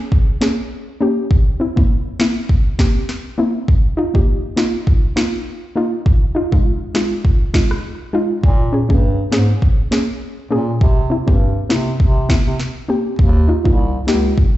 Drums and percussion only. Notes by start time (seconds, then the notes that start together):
0.12 kick
0.42 snare
1.31 kick
1.77 kick
2.20 snare
2.49 kick
2.79 kick, snare
3.09 snare
3.68 kick
4.15 kick
4.57 snare
4.87 kick
5.17 snare
6.06 kick
6.52 kick
6.95 snare
7.25 kick
7.54 kick, snare
7.71 cross-stick
8.44 kick
8.90 kick
9.32 snare
9.62 kick
9.92 snare
10.81 kick
11.28 kick
11.70 snare
12.00 kick
12.30 kick, snare
12.60 snare
13.19 kick
13.65 kick
14.08 snare
14.38 kick